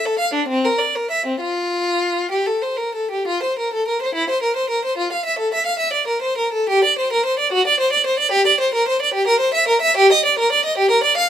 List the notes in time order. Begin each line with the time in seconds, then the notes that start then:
0.05 A4
0.19 F5
0.34 D4
0.48 C4
0.65 A#4
0.79 D5
0.95 A#4
1.11 E5
1.26 C4
1.41 F4
2.31 G4
2.47 A4
2.62 C5
2.77 A#4
2.95 A4
3.11 G4
3.27 F4
3.43 C5
3.58 A#4
3.73 A4
3.88 A#4
4.02 C5
4.15 E4
4.30 C5
4.42 A#4
4.56 C5
4.70 A#4
4.85 C5
4.97 F4
5.12 F5
5.25 E5
5.39 A4
5.54 E5
5.66 F5
5.79 E5
5.93 D5
6.07 A#4
6.22 C5
6.37 A#4
6.52 A4
6.69 G4
6.84 D5
6.98 C5
7.13 A#4
7.25 C5
7.39 D5
7.52 F#4
7.67 D5
7.80 C5
7.93 D5
8.06 C5
8.19 D5
8.31 G4
8.47 D5
8.60 C5
8.74 A#4
8.88 C5
9.02 D5
9.14 G4
9.27 A#4
9.40 C5
9.54 E5
9.68 A#4
9.81 E5
9.97 G4
10.12 D#5
10.25 D5
10.39 A#4
10.52 D5
10.65 D#5
10.78 G4
10.91 A#4
11.04 D5
11.17 F5